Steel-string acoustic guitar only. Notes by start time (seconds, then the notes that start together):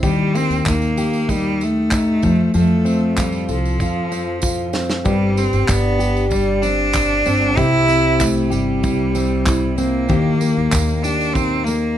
0.03 D#3 G4
0.35 A#3
0.68 D#4
0.98 G4
1.31 D#4
1.93 D#4
2.23 F3
2.54 F3 A4
2.85 C4
3.17 F4
3.49 A4
3.81 F4
4.12 C4
4.42 F4
4.73 C4
5.04 G2 G4
5.68 D4
5.99 G4
6.31 D4
6.64 C4
6.94 D4
7.26 C4
7.56 C3 G4
7.88 C4
8.20 E4
8.50 G4
8.83 E4
9.15 C4
9.46 E4
9.78 C4
10.09 D#3 G4
10.41 A#3
11.05 G4
11.36 D#4
11.68 A#3